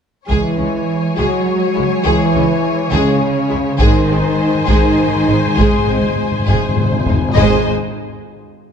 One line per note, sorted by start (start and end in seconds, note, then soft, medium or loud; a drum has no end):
0.28 0.38 C#2 soft
0.28 1.13 E3 soft
0.28 1.13 E3 medium
0.28 0.56 G#3 soft
0.28 3.76 G#3 soft
0.28 1.14 E4 medium
0.28 0.56 G#4 medium
0.28 3.76 G#4 soft
0.28 3.75 C#5 soft
0.28 3.76 C#5 soft
0.28 3.76 G#5 soft
0.28 taiko soft
0.57 0.68 C#2 soft
0.57 0.66 G#3 soft
0.57 0.65 C#4 soft
1.16 1.26 C#2 soft
1.16 2.03 F#3 medium
1.16 2.05 F#3 medium
1.16 1.45 G#3 soft
1.16 2.05 F#4 medium
1.16 1.44 G#4 soft
1.75 1.85 C#2 soft
1.75 1.85 G#3 soft
1.75 1.83 E4 soft
2.04 2.14 C#2 medium
2.04 2.91 E3 medium
2.04 2.33 G#3 soft
2.04 2.92 E4 medium
2.04 2.32 G#4 medium
2.34 2.43 C#2 soft
2.34 2.42 G#3 soft
2.34 2.43 C#4 soft
2.92 3.01 C#2 medium
2.92 3.80 C#3 medium
2.92 3.20 G#3 medium
2.92 3.81 C#4 medium
2.92 3.19 G#4 medium
3.50 3.60 C#2 soft
3.50 3.58 G#3 soft
3.50 3.58 E4 soft
3.78 3.88 G#1 medium
3.78 4.67 D#3 medium
3.78 4.66 D#3 medium
3.78 7.33 G#3 medium
3.78 4.07 G#3 medium
3.78 4.67 D#4 medium
3.78 7.33 G#4 medium
3.78 4.06 G#4 medium
3.78 7.35 C5 medium
3.78 7.13 C5 medium
3.78 7.33 G#5 medium
3.78 taiko medium
4.03 4.09 G#2 soft
4.10 4.18 G#1 medium
4.10 4.18 G#3 soft
4.10 4.18 C4 soft
4.17 4.23 G#2 soft
4.24 4.30 G#2 soft
4.31 4.38 G#2 soft
4.39 4.45 G#2 soft
4.54 4.60 G#2 soft
4.61 4.68 G#2 soft
4.67 4.76 G#1 medium
4.67 4.75 G#2 soft
4.67 5.57 D#3 medium
4.67 5.58 D#3 medium
4.67 4.96 G#3 medium
4.67 5.57 D#4 medium
4.67 4.95 G#4 medium
4.67 taiko medium
4.84 4.91 G#2 soft
4.92 4.99 G#2 soft
5.00 5.07 G#2 soft
5.08 5.15 G#2 soft
5.16 5.22 G#2 soft
5.28 5.36 G#1 soft
5.28 5.38 G#2 soft
5.28 5.37 G#3 soft
5.28 5.36 D#4 soft
5.47 5.54 G#2 soft
5.56 5.68 G#1 medium
5.56 5.63 G#2 soft
5.56 6.47 G#3 medium
5.56 6.49 G#3 medium
5.56 5.87 G#3 medium
5.56 5.86 G#4 medium
5.56 6.49 G#4 medium
5.56 taiko medium
5.64 5.70 G#2 medium
5.71 5.77 G#2 soft
5.79 5.86 G#2 medium
5.87 5.98 G#1 soft
5.87 5.93 G#2 soft
5.87 5.97 G#3 soft
5.87 5.96 C4 soft
5.95 6.01 G#2 medium
6.02 6.08 G#2 medium
6.09 6.14 G#2 medium
6.15 6.22 G#2 medium
6.24 6.30 G#2 medium
6.32 6.38 G#2 medium
6.39 6.45 G#2 medium
6.46 6.57 G#1 medium
6.46 6.52 G#2 medium
6.46 6.76 G#3 soft
6.46 6.76 G#4 medium
6.46 taiko low-mid medium
6.54 6.60 G#2 medium
6.61 6.68 G#2 medium
6.69 6.75 G#2 medium
6.76 6.83 G#2 medium
6.76 taiko mid medium
6.84 6.90 G#2 medium
6.91 6.98 G#2 medium
6.99 7.05 G#2 medium
7.06 7.16 G#1 soft
7.06 7.13 G#2 medium
7.06 7.15 G#3 soft
7.06 7.16 D#4 soft
7.06 taiko low medium
7.14 7.20 G#2 medium
7.21 7.27 G#2 medium
7.28 7.36 G#2 medium
7.35 7.70 G#1 medium
7.35 7.65 G#2 medium
7.35 7.70 G#3 medium
7.35 7.62 G#3 medium
7.35 7.70 G#3 medium
7.35 7.71 G#3 medium
7.35 7.70 G#4 medium
7.35 7.63 G#4 medium
7.35 7.70 C5 medium
7.35 7.71 C5 medium
7.35 7.69 D#5 medium
7.35 7.69 G#5 medium
7.35 taiko low medium